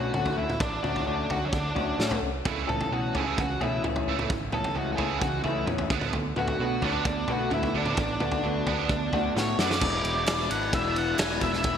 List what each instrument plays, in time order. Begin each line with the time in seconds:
Already playing: clean electric guitar D3 A3 C#4 F#4, lead electric guitar F#4
0.14 picked electric bass D2, clean electric guitar D3 A3 C#4 F#4, lead electric guitar F#4, mid tom
0.26 floor tom
0.38 picked electric bass D2, lead electric guitar E4
0.50 mid tom
0.60 picked electric bass A1, lead electric guitar D4, kick, floor tom
0.83 picked electric bass D2, clean electric guitar D3 A3 C#4 F#4, lead electric guitar D4, mid tom
0.96 floor tom
1.06 picked electric bass D2, clean electric guitar D3 A3 C#4 F#4, lead electric guitar D4
1.30 picked electric bass D2, lead electric guitar F#4, floor tom
1.45 lead electric guitar C#4
1.53 picked electric bass D2, lead electric guitar D4, kick
1.75 picked electric bass D2, clean electric guitar D3 A3 C#4 F#4, floor tom
1.98 picked electric bass A2, clean electric guitar D3 A3 C#4 F#4, snare
2.11 floor tom
2.22 picked electric bass C2
2.45 picked electric bass C#2, overdriven electric guitar C#3 E3 A3, kick, floor tom
2.67 picked electric bass C#2, overdriven electric guitar C#3 E3, clean electric guitar E3 A3 C#4 G#4, lead electric guitar A4, mid tom
2.81 floor tom
2.91 picked electric bass B2, overdriven electric guitar C#3 E3, clean electric guitar E3 A3 C#4 G#4, lead electric guitar F#4
3.15 picked electric bass C#2, overdriven electric guitar C#3 E3 A3, lead electric guitar G#4, floor tom
3.38 picked electric bass C#2, overdriven electric guitar C#3 E3, lead electric guitar F#4, kick
3.61 picked electric bass B2, overdriven electric guitar C#3 E3, clean electric guitar E3 A3 C#4 G#4, lead electric guitar E4, floor tom
3.84 picked electric bass C#2, overdriven electric guitar C#3 E3, clean electric guitar E3 A3 C#4 G#4, mid tom
3.96 floor tom
4.07 picked electric bass C#2, overdriven electric guitar C#3 E3 A3
4.19 mid tom
4.30 picked electric bass G#1, overdriven electric guitar C#3 E3, kick, floor tom
4.52 picked electric bass C#2, overdriven electric guitar C#3 E3, clean electric guitar E3 A3 C#4 G#4, lead electric guitar A4, mid tom
4.64 floor tom
4.75 picked electric bass C#2, overdriven electric guitar C#3 E3, clean electric guitar E3 A3 C#4 G#4, lead electric guitar F#4
4.93 lead electric guitar F#4 G#4
4.97 picked electric bass C#2, overdriven electric guitar C#3 E3 A3, floor tom
5.19 picked electric bass C#2, overdriven electric guitar C#3 E3, lead electric guitar F#4, kick
5.44 picked electric bass C#2, overdriven electric guitar C#3 E3, clean electric guitar E3 A3 C#4 G#4, lead electric guitar E4, floor tom
5.67 picked electric bass E2, overdriven electric guitar C#3 E3, clean electric guitar E3 A3 C#4 G#4, mid tom
5.78 floor tom
5.90 picked electric bass D2, overdriven electric guitar D3 B3 D4, kick
6.01 mid tom
6.13 picked electric bass D2, overdriven electric guitar D3 B3, floor tom
6.36 picked electric bass D2, overdriven electric guitar D3 B3, clean electric guitar D3 A3 B3 F#4, lead electric guitar F#4, mid tom
6.48 floor tom
6.59 picked electric bass B2, clean electric guitar D3 A3 B3 F#4, overdriven electric guitar D3 B3
6.81 picked electric bass D2, overdriven electric guitar D3 B3 D4, lead electric guitar D4, floor tom
7.05 picked electric bass D2, overdriven electric guitar D3 B3, kick
7.28 picked electric bass B2, overdriven electric guitar D3 B3, clean electric guitar D3 A3 B3 F#4, floor tom
7.32 lead electric guitar F#4
7.51 picked electric bass D2, overdriven electric guitar D3 B3, clean electric guitar D3 A3 B3 F#4, lead electric guitar E4, mid tom
7.63 floor tom
7.74 picked electric bass D2, overdriven electric guitar D3 B3 D4, lead electric guitar D4
7.86 mid tom
7.97 picked electric bass A1, overdriven electric guitar D3 B3, kick, floor tom
8.20 picked electric bass D2, overdriven electric guitar D3 B3, clean electric guitar D3 A3 B3 F#4, mid tom
8.32 floor tom
8.43 picked electric bass D2, overdriven electric guitar D3 B3, clean electric guitar D3 A3 B3 F#4
8.67 picked electric bass D2, overdriven electric guitar D3 B3 D4, floor tom
8.89 picked electric bass D2, overdriven electric guitar D3 B3, kick
9.12 picked electric bass D2, overdriven electric guitar D3 B3, clean electric guitar D3 A3 B3 F#4, floor tom
9.36 picked electric bass A2, overdriven electric guitar D3 B3, clean electric guitar D3 A3 B3 F#4, lead electric guitar C#5, snare
9.58 picked electric bass F#2, overdriven electric guitar D3 B3 D4, lead electric guitar D5, snare
9.71 snare
9.80 picked electric bass E1, clean electric guitar E2 B2 E3 G#3, tonewheel organ G#4 E5 B5 D6, kick, crash
9.84 clean electric guitar D4 E4
10.04 picked electric bass E1, ride
10.27 picked electric bass E1, clean electric guitar E2 B2 E3 G#3 D4 E4, snare, clap, ride
10.50 picked electric bass G#1, clean electric guitar E2 B2 E3 G#3 D4 E4, lead electric guitar F#5, ride
10.73 picked electric bass E1, clean electric guitar E2 B2 E3 G#3 D4 E4, lead electric guitar E5, kick, ride
10.96 lead electric guitar F#5, ride
11.18 picked electric bass E1, clean electric guitar E2 B2 E3 G#3 D4 E4, lead electric guitar G#5, snare, clap, ride
11.41 picked electric bass E1, clean electric guitar E2 B2 E3 G#3 D4 E4, lead electric guitar E5, kick, ride
11.53 snare
11.64 picked electric bass E1, clean electric guitar E2 B2 E3 G#3 D4 E4, kick, ride